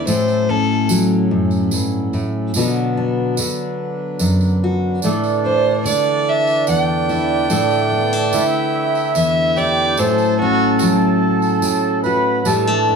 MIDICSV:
0, 0, Header, 1, 6, 480
1, 0, Start_track
1, 0, Tempo, 826446
1, 42, Time_signature, 6, 3, 24, 8
1, 7525, End_track
2, 0, Start_track
2, 0, Title_t, "Fiddle"
2, 0, Program_c, 0, 110
2, 44, Note_on_c, 0, 72, 84
2, 287, Note_on_c, 0, 69, 91
2, 295, Note_off_c, 0, 72, 0
2, 517, Note_off_c, 0, 69, 0
2, 3163, Note_on_c, 0, 72, 83
2, 3395, Note_off_c, 0, 72, 0
2, 3402, Note_on_c, 0, 74, 83
2, 3651, Note_on_c, 0, 76, 86
2, 3660, Note_off_c, 0, 74, 0
2, 3879, Note_off_c, 0, 76, 0
2, 3885, Note_on_c, 0, 79, 89
2, 5297, Note_off_c, 0, 79, 0
2, 5325, Note_on_c, 0, 76, 93
2, 5563, Note_on_c, 0, 74, 97
2, 5572, Note_off_c, 0, 76, 0
2, 5803, Note_on_c, 0, 72, 89
2, 5812, Note_off_c, 0, 74, 0
2, 6033, Note_off_c, 0, 72, 0
2, 6042, Note_on_c, 0, 66, 103
2, 6273, Note_off_c, 0, 66, 0
2, 7525, End_track
3, 0, Start_track
3, 0, Title_t, "Accordion"
3, 0, Program_c, 1, 21
3, 2923, Note_on_c, 1, 62, 84
3, 4842, Note_on_c, 1, 64, 97
3, 4897, Note_off_c, 1, 62, 0
3, 5555, Note_on_c, 1, 67, 100
3, 5581, Note_off_c, 1, 64, 0
3, 5797, Note_on_c, 1, 69, 105
3, 5803, Note_off_c, 1, 67, 0
3, 6974, Note_off_c, 1, 69, 0
3, 6992, Note_on_c, 1, 71, 110
3, 7237, Note_on_c, 1, 69, 116
3, 7242, Note_off_c, 1, 71, 0
3, 7525, Note_off_c, 1, 69, 0
3, 7525, End_track
4, 0, Start_track
4, 0, Title_t, "Harmonium"
4, 0, Program_c, 2, 20
4, 0, Note_on_c, 2, 69, 74
4, 36, Note_on_c, 2, 61, 65
4, 39, Note_on_c, 2, 54, 64
4, 40, Note_on_c, 2, 45, 67
4, 1462, Note_off_c, 2, 69, 0
4, 1465, Note_off_c, 2, 61, 0
4, 1466, Note_off_c, 2, 54, 0
4, 1467, Note_off_c, 2, 45, 0
4, 1488, Note_on_c, 2, 62, 65
4, 1488, Note_on_c, 2, 71, 77
4, 1490, Note_on_c, 2, 54, 67
4, 2910, Note_off_c, 2, 71, 0
4, 2911, Note_off_c, 2, 54, 0
4, 2921, Note_on_c, 2, 52, 74
4, 2923, Note_on_c, 2, 69, 80
4, 5774, Note_off_c, 2, 52, 0
4, 5777, Note_off_c, 2, 62, 0
4, 5793, Note_on_c, 2, 45, 82
4, 5795, Note_on_c, 2, 54, 72
4, 5795, Note_on_c, 2, 61, 69
4, 7216, Note_off_c, 2, 69, 0
4, 7221, Note_off_c, 2, 45, 0
4, 7222, Note_off_c, 2, 54, 0
4, 7222, Note_off_c, 2, 61, 0
4, 7230, Note_on_c, 2, 69, 81
4, 7231, Note_on_c, 2, 52, 72
4, 7231, Note_on_c, 2, 62, 68
4, 7525, Note_off_c, 2, 52, 0
4, 7525, Note_off_c, 2, 62, 0
4, 7525, Note_off_c, 2, 69, 0
4, 7525, End_track
5, 0, Start_track
5, 0, Title_t, "Steel-string acoustic guitar"
5, 0, Program_c, 3, 25
5, 42, Note_on_c, 3, 45, 79
5, 45, Note_on_c, 3, 57, 62
5, 288, Note_on_c, 3, 61, 57
5, 522, Note_on_c, 3, 54, 63
5, 762, Note_on_c, 3, 42, 61
5, 1002, Note_off_c, 3, 42, 0
5, 1004, Note_on_c, 3, 43, 64
5, 1233, Note_off_c, 3, 45, 0
5, 1240, Note_on_c, 3, 45, 64
5, 1243, Note_off_c, 3, 43, 0
5, 1454, Note_off_c, 3, 54, 0
5, 1455, Note_off_c, 3, 57, 0
5, 1457, Note_off_c, 3, 61, 0
5, 1481, Note_off_c, 3, 45, 0
5, 1485, Note_on_c, 3, 47, 77
5, 1491, Note_on_c, 3, 50, 67
5, 1494, Note_on_c, 3, 59, 64
5, 1497, Note_on_c, 3, 62, 65
5, 1501, Note_on_c, 3, 66, 72
5, 1725, Note_off_c, 3, 62, 0
5, 1727, Note_on_c, 3, 62, 53
5, 1959, Note_off_c, 3, 50, 0
5, 1963, Note_off_c, 3, 47, 0
5, 1966, Note_on_c, 3, 50, 60
5, 2440, Note_on_c, 3, 42, 62
5, 2686, Note_off_c, 3, 66, 0
5, 2693, Note_on_c, 3, 66, 66
5, 2892, Note_off_c, 3, 42, 0
5, 2898, Note_off_c, 3, 59, 0
5, 2898, Note_off_c, 3, 66, 0
5, 2927, Note_on_c, 3, 45, 72
5, 2930, Note_on_c, 3, 57, 63
5, 3168, Note_off_c, 3, 62, 0
5, 3170, Note_on_c, 3, 62, 54
5, 3392, Note_off_c, 3, 50, 0
5, 3399, Note_on_c, 3, 50, 65
5, 3404, Note_off_c, 3, 45, 0
5, 3879, Note_on_c, 3, 40, 63
5, 4121, Note_on_c, 3, 64, 68
5, 4335, Note_off_c, 3, 62, 0
5, 4355, Note_on_c, 3, 45, 78
5, 4357, Note_off_c, 3, 57, 0
5, 4359, Note_off_c, 3, 40, 0
5, 4359, Note_on_c, 3, 57, 70
5, 4598, Note_on_c, 3, 59, 55
5, 4720, Note_off_c, 3, 59, 0
5, 4720, Note_on_c, 3, 62, 55
5, 4833, Note_off_c, 3, 50, 0
5, 4837, Note_off_c, 3, 45, 0
5, 4840, Note_on_c, 3, 50, 62
5, 5318, Note_on_c, 3, 40, 60
5, 5559, Note_off_c, 3, 64, 0
5, 5565, Note_on_c, 3, 64, 68
5, 5797, Note_off_c, 3, 40, 0
5, 5798, Note_off_c, 3, 50, 0
5, 5798, Note_off_c, 3, 62, 0
5, 5800, Note_on_c, 3, 45, 80
5, 5801, Note_off_c, 3, 64, 0
5, 5803, Note_off_c, 3, 57, 0
5, 5805, Note_on_c, 3, 57, 70
5, 6050, Note_on_c, 3, 61, 59
5, 6286, Note_on_c, 3, 54, 70
5, 6753, Note_off_c, 3, 45, 0
5, 6755, Note_on_c, 3, 45, 64
5, 7003, Note_on_c, 3, 66, 69
5, 7212, Note_off_c, 3, 66, 0
5, 7213, Note_off_c, 3, 54, 0
5, 7215, Note_off_c, 3, 61, 0
5, 7232, Note_off_c, 3, 57, 0
5, 7234, Note_off_c, 3, 45, 0
5, 7234, Note_on_c, 3, 55, 70
5, 7236, Note_on_c, 3, 45, 86
5, 7361, Note_off_c, 3, 55, 0
5, 7361, Note_on_c, 3, 57, 55
5, 7487, Note_on_c, 3, 62, 57
5, 7525, Note_off_c, 3, 45, 0
5, 7525, Note_off_c, 3, 57, 0
5, 7525, Note_off_c, 3, 62, 0
5, 7525, End_track
6, 0, Start_track
6, 0, Title_t, "Drums"
6, 41, Note_on_c, 9, 54, 90
6, 99, Note_off_c, 9, 54, 0
6, 162, Note_on_c, 9, 54, 27
6, 220, Note_off_c, 9, 54, 0
6, 517, Note_on_c, 9, 54, 99
6, 575, Note_off_c, 9, 54, 0
6, 876, Note_on_c, 9, 54, 28
6, 934, Note_off_c, 9, 54, 0
6, 995, Note_on_c, 9, 54, 90
6, 1053, Note_off_c, 9, 54, 0
6, 1238, Note_on_c, 9, 54, 30
6, 1296, Note_off_c, 9, 54, 0
6, 1474, Note_on_c, 9, 54, 101
6, 1532, Note_off_c, 9, 54, 0
6, 1959, Note_on_c, 9, 54, 106
6, 2017, Note_off_c, 9, 54, 0
6, 2436, Note_on_c, 9, 54, 88
6, 2494, Note_off_c, 9, 54, 0
6, 2559, Note_on_c, 9, 54, 27
6, 2617, Note_off_c, 9, 54, 0
6, 2917, Note_on_c, 9, 54, 84
6, 2975, Note_off_c, 9, 54, 0
6, 3041, Note_on_c, 9, 54, 27
6, 3099, Note_off_c, 9, 54, 0
6, 3401, Note_on_c, 9, 54, 93
6, 3459, Note_off_c, 9, 54, 0
6, 3759, Note_on_c, 9, 54, 26
6, 3817, Note_off_c, 9, 54, 0
6, 3874, Note_on_c, 9, 54, 79
6, 3932, Note_off_c, 9, 54, 0
6, 4118, Note_on_c, 9, 54, 26
6, 4176, Note_off_c, 9, 54, 0
6, 4355, Note_on_c, 9, 54, 84
6, 4413, Note_off_c, 9, 54, 0
6, 4475, Note_on_c, 9, 54, 24
6, 4533, Note_off_c, 9, 54, 0
6, 4836, Note_on_c, 9, 54, 90
6, 4894, Note_off_c, 9, 54, 0
6, 5198, Note_on_c, 9, 54, 25
6, 5256, Note_off_c, 9, 54, 0
6, 5314, Note_on_c, 9, 54, 76
6, 5372, Note_off_c, 9, 54, 0
6, 5555, Note_on_c, 9, 54, 27
6, 5613, Note_off_c, 9, 54, 0
6, 5793, Note_on_c, 9, 54, 83
6, 5851, Note_off_c, 9, 54, 0
6, 5911, Note_on_c, 9, 54, 28
6, 5969, Note_off_c, 9, 54, 0
6, 6268, Note_on_c, 9, 54, 92
6, 6326, Note_off_c, 9, 54, 0
6, 6633, Note_on_c, 9, 54, 26
6, 6691, Note_off_c, 9, 54, 0
6, 6750, Note_on_c, 9, 54, 86
6, 6808, Note_off_c, 9, 54, 0
6, 6991, Note_on_c, 9, 54, 26
6, 7049, Note_off_c, 9, 54, 0
6, 7232, Note_on_c, 9, 54, 85
6, 7290, Note_off_c, 9, 54, 0
6, 7525, End_track
0, 0, End_of_file